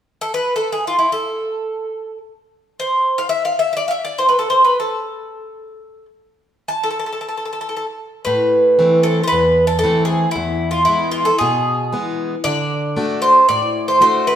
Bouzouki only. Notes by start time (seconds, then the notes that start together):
0.21 A4
0.34 B4
0.56 A4
0.72 G#4
0.87 F4
0.99 E4
1.12 A4
2.80 C5
3.18 F5
3.29 E5
3.45 F5
3.59 E5
3.73 D5 E5
3.88 E5 F5
4.05 D5
4.18 C5
4.29 B4
4.39 A4
4.50 C5
4.64 B4
4.80 A4
6.68 A5
6.83 A4
6.90 A4
6.99 A4
7.06 A4
7.12 A4
7.21 A4
7.29 A4
7.37 A4
7.45 A4
7.53 A4
7.61 A4
7.69 A4
7.77 A4
8.25 B4
9.03 A4
9.23 C5
9.28 B4
9.67 A4
9.79 A4
10.05 G#4
10.31 E4
10.71 F4
10.85 E4
11.11 F4
11.25 A4
11.38 G#4
12.44 D5
13.22 C5
13.49 D5
13.88 C5
14.02 C5
14.27 B4